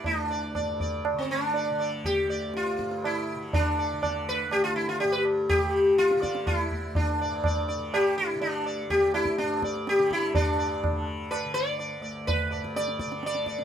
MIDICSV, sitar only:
0, 0, Header, 1, 2, 480
1, 0, Start_track
1, 0, Tempo, 493016
1, 55, Time_signature, 7, 2, 24, 8
1, 6775, Tempo, 481928
1, 13432, End_track
2, 0, Start_track
2, 0, Title_t, "Sitar"
2, 0, Program_c, 0, 104
2, 58, Note_on_c, 0, 62, 73
2, 298, Note_on_c, 0, 74, 36
2, 524, Note_off_c, 0, 74, 0
2, 538, Note_on_c, 0, 74, 40
2, 745, Note_off_c, 0, 62, 0
2, 765, Note_off_c, 0, 74, 0
2, 786, Note_on_c, 0, 74, 37
2, 1010, Note_off_c, 0, 74, 0
2, 1153, Note_on_c, 0, 60, 64
2, 1274, Note_off_c, 0, 60, 0
2, 1276, Note_on_c, 0, 62, 83
2, 1515, Note_on_c, 0, 74, 34
2, 1737, Note_off_c, 0, 74, 0
2, 1751, Note_on_c, 0, 74, 42
2, 1837, Note_off_c, 0, 62, 0
2, 1975, Note_off_c, 0, 74, 0
2, 2002, Note_on_c, 0, 67, 89
2, 2237, Note_on_c, 0, 74, 37
2, 2445, Note_off_c, 0, 67, 0
2, 2459, Note_off_c, 0, 74, 0
2, 2498, Note_on_c, 0, 65, 83
2, 2968, Note_off_c, 0, 65, 0
2, 2972, Note_on_c, 0, 64, 86
2, 3446, Note_off_c, 0, 64, 0
2, 3450, Note_on_c, 0, 62, 91
2, 3688, Note_on_c, 0, 74, 33
2, 3905, Note_off_c, 0, 74, 0
2, 3918, Note_on_c, 0, 74, 37
2, 4139, Note_off_c, 0, 74, 0
2, 4174, Note_on_c, 0, 71, 95
2, 4183, Note_off_c, 0, 62, 0
2, 4405, Note_on_c, 0, 67, 90
2, 4411, Note_off_c, 0, 71, 0
2, 4511, Note_off_c, 0, 67, 0
2, 4515, Note_on_c, 0, 65, 86
2, 4628, Note_off_c, 0, 65, 0
2, 4632, Note_on_c, 0, 64, 84
2, 4754, Note_off_c, 0, 64, 0
2, 4758, Note_on_c, 0, 65, 86
2, 4864, Note_off_c, 0, 65, 0
2, 4868, Note_on_c, 0, 67, 86
2, 4986, Note_on_c, 0, 71, 85
2, 4993, Note_off_c, 0, 67, 0
2, 5100, Note_off_c, 0, 71, 0
2, 5349, Note_on_c, 0, 67, 100
2, 5821, Note_off_c, 0, 67, 0
2, 5825, Note_on_c, 0, 65, 95
2, 6054, Note_on_c, 0, 74, 40
2, 6280, Note_off_c, 0, 74, 0
2, 6295, Note_off_c, 0, 65, 0
2, 6299, Note_on_c, 0, 65, 81
2, 6406, Note_off_c, 0, 65, 0
2, 6406, Note_on_c, 0, 64, 81
2, 6774, Note_off_c, 0, 64, 0
2, 6778, Note_on_c, 0, 62, 72
2, 7029, Note_on_c, 0, 74, 36
2, 7250, Note_off_c, 0, 74, 0
2, 7272, Note_on_c, 0, 74, 43
2, 7465, Note_off_c, 0, 62, 0
2, 7486, Note_off_c, 0, 74, 0
2, 7498, Note_on_c, 0, 74, 36
2, 7726, Note_off_c, 0, 74, 0
2, 7751, Note_on_c, 0, 67, 97
2, 7985, Note_off_c, 0, 67, 0
2, 7989, Note_on_c, 0, 64, 86
2, 8222, Note_off_c, 0, 64, 0
2, 8226, Note_on_c, 0, 62, 69
2, 8453, Note_off_c, 0, 62, 0
2, 8471, Note_on_c, 0, 74, 37
2, 8696, Note_off_c, 0, 74, 0
2, 8712, Note_on_c, 0, 67, 102
2, 8946, Note_off_c, 0, 67, 0
2, 8950, Note_on_c, 0, 64, 87
2, 9176, Note_off_c, 0, 64, 0
2, 9190, Note_on_c, 0, 62, 76
2, 9417, Note_off_c, 0, 62, 0
2, 9448, Note_on_c, 0, 74, 39
2, 9666, Note_off_c, 0, 74, 0
2, 9695, Note_on_c, 0, 67, 98
2, 9927, Note_off_c, 0, 67, 0
2, 9931, Note_on_c, 0, 64, 84
2, 10150, Note_on_c, 0, 74, 33
2, 10151, Note_off_c, 0, 64, 0
2, 10155, Note_on_c, 0, 62, 70
2, 10377, Note_off_c, 0, 74, 0
2, 10387, Note_on_c, 0, 74, 37
2, 10615, Note_off_c, 0, 74, 0
2, 10835, Note_off_c, 0, 62, 0
2, 11107, Note_on_c, 0, 71, 79
2, 11334, Note_off_c, 0, 71, 0
2, 11338, Note_on_c, 0, 74, 90
2, 11573, Note_off_c, 0, 74, 0
2, 11585, Note_on_c, 0, 74, 33
2, 11805, Note_off_c, 0, 74, 0
2, 11817, Note_on_c, 0, 74, 35
2, 12046, Note_off_c, 0, 74, 0
2, 12068, Note_on_c, 0, 71, 91
2, 12301, Note_on_c, 0, 74, 33
2, 12527, Note_off_c, 0, 74, 0
2, 12556, Note_on_c, 0, 74, 86
2, 12560, Note_off_c, 0, 71, 0
2, 12776, Note_off_c, 0, 74, 0
2, 12788, Note_on_c, 0, 74, 37
2, 13008, Note_off_c, 0, 74, 0
2, 13054, Note_on_c, 0, 74, 88
2, 13251, Note_off_c, 0, 74, 0
2, 13263, Note_on_c, 0, 74, 36
2, 13432, Note_off_c, 0, 74, 0
2, 13432, End_track
0, 0, End_of_file